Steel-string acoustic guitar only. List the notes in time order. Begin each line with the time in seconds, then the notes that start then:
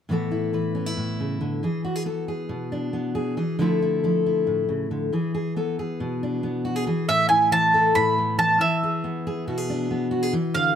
0.09 A2 E3 B3 E4 A4
0.31 E4
0.53 E3 B4
0.75 C#4
0.86 E4
0.97 A2
1.20 C#3
1.41 D3
1.63 E3 G#4
1.85 F#4
1.96 G#4
2.06 B3 A4
2.28 G#4
2.49 B2
2.72 D4
2.93 B3
3.15 G#4
3.37 E3 G#4
3.59 D3 F3 A3 E4 A4
3.82 E4
4.04 F3 A4
4.26 E4
4.47 A2
4.69 C#3
4.91 D3
5.13 E3 G#4
5.34 G#4
5.56 B3 A4
5.79 G#4
6.00 B2
6.23 D4
6.43 B3
6.65 F#4
6.76 G#4
6.87 E3 G#4
7.08 A2
7.30 E4
7.52 E3
7.74 A4
7.96 A2 E4
8.18 B3
8.38 E3
8.60 E3
8.83 G#4
9.04 B3
9.27 G#4
9.47 B2 F#4
9.58 G#4
9.70 D4
9.91 B3
10.11 F#4
10.23 G#4
10.33 E3
10.55 D3